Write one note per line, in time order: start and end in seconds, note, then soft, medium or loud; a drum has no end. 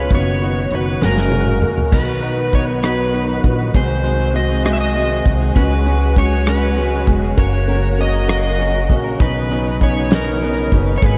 0.00 0.98 B2 soft
0.00 0.13 B4 medium
0.10 0.68 F#1 medium
0.10 1.01 D#3 medium
0.10 1.01 F#3 soft
0.10 0.37 B3 medium
0.10 0.37 D#4 medium
0.10 0.37 F#4 medium
0.10 1.91 F#4 medium
0.10 kick medium
0.10 closed hi-hat medium
0.15 0.75 C#5 medium
0.42 0.67 B3 medium
0.42 0.67 D#4 medium
0.42 0.67 F#4 medium
0.42 closed hi-hat soft
0.71 1.00 F#1 medium
0.71 0.97 B3 medium
0.71 0.97 D#4 medium
0.71 0.98 F#4 medium
0.71 closed hi-hat soft
0.75 1.04 B4 medium
1.01 1.59 F#1 medium
1.01 1.92 C#3 medium
1.01 1.27 G#3 medium
1.01 1.91 G#3 soft
1.01 1.91 A#3 soft
1.01 1.27 A#3 medium
1.01 1.28 F#4 medium
1.01 1.68 A#4 medium
1.01 snare soft
1.17 snare soft
1.32 1.58 G#3 medium
1.32 1.58 A#3 soft
1.32 1.58 F#4 medium
1.32 high tom medium
1.47 mid tom medium
1.62 1.88 G#3 medium
1.62 1.88 A#3 soft
1.62 1.89 F#4 medium
1.62 mid tom medium
1.78 floor tom medium
1.92 3.40 B1 medium
1.92 2.22 B2 medium
1.92 2.23 D#3 medium
1.92 5.53 D#3 soft
1.92 2.21 F#3 medium
1.92 3.73 F#3 medium
1.92 3.73 B3 soft
1.92 2.22 B3 medium
1.92 2.19 B3 medium
1.92 2.19 D#4 medium
1.92 2.22 D#4 medium
1.92 5.53 F#4 medium
1.92 2.19 F#4 medium
1.92 2.23 B4 medium
1.92 2.55 B4 medium
1.92 kick loud
1.92 crash medium
2.22 2.37 F#3 soft
2.22 2.48 B3 medium
2.22 2.38 B3 soft
2.22 2.49 D#4 medium
2.22 2.37 D#4 soft
2.22 2.49 F#4 medium
2.22 2.36 B4 soft
2.22 closed hi-hat soft
2.38 2.69 F#3 soft
2.38 2.68 B3 soft
2.38 2.67 D#4 soft
2.38 2.66 B4 soft
2.52 2.79 B3 medium
2.52 2.79 D#4 medium
2.52 2.79 F#4 medium
2.52 2.63 C#5 medium
2.52 kick medium
2.52 closed hi-hat soft
2.67 2.82 F#3 soft
2.67 2.83 B3 soft
2.67 2.83 D#4 soft
2.67 2.83 B4 soft
2.83 3.13 B2 medium
2.83 3.14 D#3 medium
2.83 3.11 F#3 medium
2.83 3.09 B3 medium
2.83 3.12 B3 medium
2.83 3.09 D#4 medium
2.83 3.13 D#4 medium
2.83 3.10 F#4 medium
2.83 3.14 B4 medium
2.83 3.41 B4 medium
2.83 cross-stick loud
2.83 closed hi-hat medium
3.13 3.28 F#3 soft
3.13 3.29 B3 soft
3.13 3.40 B3 medium
3.13 3.40 D#4 medium
3.13 3.28 D#4 soft
3.13 3.40 F#4 medium
3.13 3.27 B4 soft
3.13 closed hi-hat soft
3.28 3.60 F#3 soft
3.28 3.59 B3 soft
3.28 3.58 D#4 soft
3.28 3.57 B4 soft
3.44 3.73 A#1 medium
3.44 3.70 B3 medium
3.44 3.70 D#4 soft
3.44 3.70 F#4 medium
3.44 kick medium
3.44 closed hi-hat soft
3.59 3.74 F#3 soft
3.59 3.74 B3 soft
3.59 3.74 D#4 soft
3.59 3.74 B4 soft
3.74 5.22 C2 medium
3.74 4.05 C3 medium
3.74 4.05 D#3 medium
3.74 4.03 F#3 medium
3.74 4.00 G#3 medium
3.74 5.55 G#3 soft
3.74 4.00 C4 medium
3.74 4.04 C4 medium
3.74 5.55 C4 soft
3.74 4.04 D#4 medium
3.74 4.01 F#4 medium
3.74 4.05 G#4 medium
3.74 4.32 C5 medium
3.74 kick loud
3.74 closed hi-hat medium
4.04 4.20 F#3 medium
4.04 4.30 G#3 medium
4.04 4.30 C4 medium
4.04 4.20 C4 medium
4.04 4.19 D#4 soft
4.04 4.30 F#4 medium
4.04 4.18 G#4 medium
4.04 closed hi-hat soft
4.19 4.50 F#3 soft
4.19 4.50 C4 soft
4.19 4.49 D#4 soft
4.19 4.48 G#4 medium
4.34 4.61 G#3 medium
4.34 4.61 C4 medium
4.34 4.61 F#4 medium
4.34 4.64 D#5 medium
4.34 closed hi-hat soft
4.49 4.64 F#3 soft
4.49 4.64 C4 soft
4.49 4.65 D#4 soft
4.49 4.65 G#4 soft
4.64 4.95 C3 medium
4.64 4.95 D#3 medium
4.64 4.94 F#3 medium
4.64 4.91 G#3 medium
4.64 4.91 C4 medium
4.64 4.94 C4 medium
4.64 4.95 D#4 medium
4.64 4.92 F#4 medium
4.64 4.96 G#4 medium
4.64 4.72 D#5 medium
4.64 cross-stick medium
4.64 closed hi-hat medium
4.73 4.80 E5 medium
4.81 5.30 D#5 medium
4.95 5.10 F#3 soft
4.95 5.21 G#3 medium
4.95 5.10 C4 medium
4.95 5.22 C4 medium
4.95 5.09 D#4 medium
4.95 5.22 F#4 medium
4.95 5.09 G#4 medium
4.95 closed hi-hat soft
5.10 5.41 F#3 soft
5.10 5.41 C4 soft
5.10 5.40 D#4 soft
5.10 5.39 G#4 soft
5.25 5.54 C2 medium
5.25 5.52 G#3 medium
5.25 5.52 C4 medium
5.25 5.52 F#4 medium
5.25 kick medium
5.25 closed hi-hat soft
5.41 5.55 F#3 soft
5.41 5.56 C4 soft
5.41 5.56 D#4 medium
5.41 5.56 G#4 medium
5.55 7.04 C#2 medium
5.55 5.86 C#3 medium
5.55 10.98 C#3 medium
5.55 10.98 F#3 medium
5.55 5.85 F#3 medium
5.55 7.36 G#3 medium
5.55 5.82 G#3 medium
5.55 5.82 C#4 medium
5.55 5.85 C#4 medium
5.55 7.36 F#4 medium
5.55 5.83 F#4 medium
5.55 5.86 F#4 medium
5.55 5.87 G#4 medium
5.55 6.19 B4 medium
5.55 kick medium
5.55 closed hi-hat medium
5.86 6.01 F#3 medium
5.86 6.12 G#3 medium
5.86 6.12 C#4 medium
5.86 6.02 C#4 medium
5.86 6.13 F#4 medium
5.86 6.01 F#4 medium
5.86 6.00 G#4 medium
5.86 closed hi-hat soft
6.01 6.32 C#4 soft
6.01 6.32 F#4 soft
6.01 6.30 G#4 soft
6.16 6.43 G#3 medium
6.16 6.43 C#4 medium
6.16 6.43 F#4 medium
6.16 6.49 C#5 medium
6.16 kick medium
6.16 closed hi-hat soft
6.31 6.46 C#4 soft
6.31 6.46 F#4 soft
6.31 6.47 G#4 soft
6.46 6.77 C#3 medium
6.46 6.75 F#3 medium
6.46 6.73 G#3 medium
6.46 6.73 C#4 medium
6.46 6.76 C#4 medium
6.46 6.73 F#4 medium
6.46 6.77 F#4 medium
6.46 6.78 G#4 medium
6.46 7.04 B4 medium
6.46 cross-stick medium
6.46 closed hi-hat medium
6.76 6.92 F#3 soft
6.76 7.03 G#3 medium
6.76 7.03 C#4 soft
6.76 6.93 C#4 soft
6.76 7.03 F#4 medium
6.76 6.92 F#4 medium
6.76 6.91 G#4 soft
6.76 closed hi-hat soft
6.92 7.23 C#4 soft
6.92 7.22 F#4 soft
6.92 7.21 G#4 soft
7.07 7.36 E1 medium
7.07 7.33 G#3 medium
7.07 7.34 C#4 medium
7.07 7.34 F#4 medium
7.07 kick medium
7.07 closed hi-hat soft
7.22 7.36 C#4 soft
7.22 7.37 F#4 soft
7.22 7.38 G#4 medium
7.37 8.86 F#1 medium
7.37 7.66 F#3 medium
7.37 7.64 A#3 medium
7.37 9.19 A#3 medium
7.37 7.64 C#4 medium
7.37 7.67 C#4 medium
7.37 7.64 F#4 medium
7.37 7.68 F#4 medium
7.37 9.19 F#4 medium
7.37 7.69 A#4 medium
7.37 8.01 C#5 medium
7.37 kick loud
7.37 closed hi-hat medium
7.67 7.83 F#3 soft
7.67 7.94 A#3 medium
7.67 7.94 C#4 medium
7.67 7.84 C#4 medium
7.67 7.94 F#4 medium
7.67 7.83 F#4 soft
7.67 7.82 A#4 medium
7.67 closed hi-hat soft
7.83 8.14 C#4 soft
7.83 8.13 F#4 soft
7.83 8.12 A#4 soft
7.98 8.25 A#3 medium
7.98 8.25 C#4 medium
7.98 8.25 F#4 medium
7.98 8.29 D#5 medium
7.98 closed hi-hat soft
8.13 8.28 C#4 soft
8.13 8.29 F#4 soft
8.13 8.29 A#4 soft
8.28 8.57 F#3 medium
8.28 8.55 A#3 medium
8.28 8.55 C#4 medium
8.28 8.58 C#4 medium
8.28 8.55 F#4 medium
8.28 8.59 F#4 medium
8.28 8.60 A#4 medium
8.28 8.94 D#5 medium
8.28 cross-stick loud
8.28 closed hi-hat medium
8.58 8.74 F#3 soft
8.58 8.85 C#4 medium
8.58 8.75 C#4 soft
8.58 8.85 F#4 medium
8.58 8.74 F#4 medium
8.58 8.72 A#4 medium
8.58 closed hi-hat soft
8.73 9.05 C#4 soft
8.73 9.04 F#4 soft
8.73 9.03 A#4 soft
8.90 9.18 A#1 medium
8.90 9.16 A#3 medium
8.90 9.16 C#4 medium
8.90 9.16 F#4 medium
8.90 kick medium
8.90 closed hi-hat soft
9.04 9.19 C#4 soft
9.04 9.20 F#4 soft
9.04 9.20 A#4 soft
9.19 10.68 B1 medium
9.19 9.50 B2 medium
9.19 11.18 B2 soft
9.19 9.50 D#3 medium
9.19 9.49 F#3 medium
9.19 9.46 B3 medium
9.19 9.46 C#4 medium
9.19 9.50 C#4 medium
9.19 9.46 D#4 medium
9.19 9.50 D#4 medium
9.19 11.18 D#4 medium
9.19 9.51 B4 medium
9.19 9.78 B4 medium
9.19 kick loud
9.19 closed hi-hat medium
9.50 9.65 F#3 soft
9.50 9.77 B3 medium
9.50 9.66 C#4 medium
9.50 9.77 C#4 medium
9.50 9.77 D#4 medium
9.50 9.65 D#4 medium
9.50 9.64 B4 soft
9.50 closed hi-hat soft
9.66 9.97 F#3 soft
9.66 9.96 C#4 soft
9.66 9.95 D#4 soft
9.66 9.95 B4 soft
9.80 10.07 B3 medium
9.80 10.07 C#4 medium
9.80 10.07 D#4 medium
9.80 10.13 C#5 medium
9.80 kick medium
9.80 closed hi-hat soft
9.96 10.11 F#3 soft
9.96 10.11 C#4 soft
9.96 10.12 D#4 soft
9.96 10.11 B4 soft
10.11 10.42 B2 medium
10.11 10.42 D#3 medium
10.11 10.40 F#3 medium
10.11 10.37 B3 medium
10.11 10.38 C#4 medium
10.11 10.41 C#4 medium
10.11 10.38 D#4 medium
10.11 10.42 D#4 medium
10.11 10.70 A#4 medium
10.11 snare loud
10.11 closed hi-hat medium
10.41 10.57 F#3 soft
10.41 10.68 B3 medium
10.41 10.68 C#4 medium
10.41 10.57 C#4 medium
10.41 10.68 D#4 medium
10.41 10.56 D#4 medium
10.41 10.55 B4 medium
10.41 closed hi-hat soft
10.56 10.87 F#3 soft
10.56 10.87 C#4 soft
10.56 10.86 D#4 soft
10.56 10.85 B4 soft
10.72 11.01 F#1 medium
10.72 10.98 B3 medium
10.72 10.98 C#4 medium
10.72 10.99 D#4 medium
10.72 kick medium
10.72 closed hi-hat soft
10.86 11.02 F#3 soft
10.86 11.02 C#4 soft
10.86 11.02 D#4 soft
10.86 11.02 B4 medium
10.98 11.18 G#2 medium
10.98 11.03 C#5 medium
11.02 11.18 G#1 medium
11.02 11.18 D#3 medium
11.02 11.18 G#3 medium
11.02 11.18 A#3 medium
11.02 11.18 B3 medium
11.02 11.18 D#4 medium
11.02 11.18 G#4 medium
11.02 kick loud
11.02 closed hi-hat medium
11.06 11.18 B4 medium